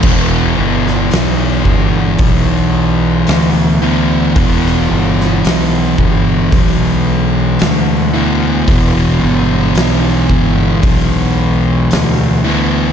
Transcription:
<<
  \new Staff \with { instrumentName = "Distorted electric guitar" } { \clef bass \time 4/4 \key e \minor \tempo 4 = 56 <e, b, e>2.~ <e, b, e>8 <e, b, e>8 | <e, b, e>2.~ <e, b, e>8 <e, b, e>8 | <e, b, e>2.~ <e, b, e>8 <e, b, e>8 | }
  \new Staff \with { instrumentName = "Fingered electric bass" } { \clef bass \time 4/4 \key e \minor e,,8 g,,8 b,,8 g,,8 b,,4 d,4 | e,,8 g,,8 b,,8 g,,8 b,,4 d,4 | e,,8 g,,8 b,,8 g,,8 b,,4 d,4 | }
  \new DrumStaff \with { instrumentName = "Drums" } \drummode { \time 4/4 <cymc bd>8. sn16 <hho sn>8 bd8 <hho bd>4 <hho sn>4 | <hho bd>16 sn8 sn16 <hho sn>8 bd8 <hho bd>4 <hho sn>4 | <hho bd>4 <hho sn>8 bd8 <hho bd>4 <hho sn>4 | }
>>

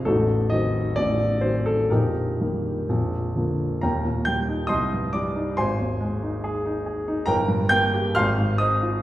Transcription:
<<
  \new Staff \with { instrumentName = "Grand piano" } { \time 2/4 \key ees \major \tempo 4 = 67 <ees' fis' a'>8 ees''8 d''8 c''16 a'16 | <ees' g' bes'>4 r4 | <bes' g'' bes''>8 <g'' g'''>8 <ees'' c''' ees'''>8 <d'' d'''>8 | <c'' aes'' c'''>2 |
<bes' g'' bes''>8 <g'' g'''>8 <f'' c''' f'''>8 <ees'' ees'''>8 | }
  \new Staff \with { instrumentName = "Grand piano" } { \clef bass \time 2/4 \key ees \major <a,,, a,,>8 <ees fis c'>8 <a,,, a,,>8 <ees fis c'>8 | <bes,,, bes,,>8 <ees g bes>8 <bes,,, bes,,>8 <d f bes>8 | <ees,, ees,>16 bes,16 g16 ees'16 c,16 g,16 g16 ees'16 | aes,,16 ees,16 aes16 ees'16 aes'16 ees'16 aes'16 ees'16 |
g,,16 g,16 bes16 g'16 aes,,16 aes,16 c'16 f'16 | }
>>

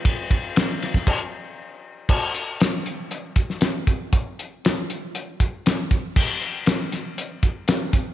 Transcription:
\new DrumStaff \with { instrumentName = "Drums" } \drummode { \time 4/4 \tempo 4 = 118 <bd cymr>8 <bd cymr>8 <cymr sn>8 <cymr sn>16 <bd sn>16 <cymc bd>4 r4 | <cymc bd>8 hh8 <hh sn>8 hh8 hh8 <hh bd>16 sn16 <hh sn>8 <hh bd>8 | <hh bd>8 hh8 <hh sn>8 hh8 hh8 <hh bd>8 <hh sn>8 <hh bd>8 | <cymc bd>8 hh8 <hh sn>8 <hh sn>8 hh8 <hh bd>8 <hh sn>8 <hh bd>8 | }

